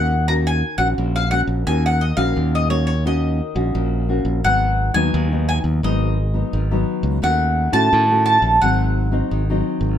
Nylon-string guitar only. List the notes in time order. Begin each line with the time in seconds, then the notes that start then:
Already playing: A#2 A#3 C#4 F#4
0.28 D#3 A#3 C#4 F#4
0.78 A#3 C#4 F#4
0.98 A#2
1.32 A#3 C#4 F#4
1.67 D#3 A#3 C#4 F#4
2.17 A#3 C#4 F#4
2.36 A#2
2.69 A#3 C#4 F#4
3.05 D#3 A#3 C#4 F#4
3.55 A#3 C#4 F#4
3.75 A#2
4.09 A#3 C#4 F#4
4.44 G#2 F#3 B3 D#4
4.94 F#3 B3 D#4
5.14 D#3
5.32 F#3 B3 D#4
5.83 G#2 F#3 B3 D#4
6.34 F#3 B3 D#4
6.53 D#3
6.71 F#3 B3 D#4
7.22 D#3 A3 C#4 F#4
7.72 A3 C#4 F#4
7.93 D#3
8.10 A3 C#4 F#4
8.62 G#2 F#3 C4 D#4
9.12 F#3 C4 D#4
9.31 D#3
9.50 F#3 C4 D#4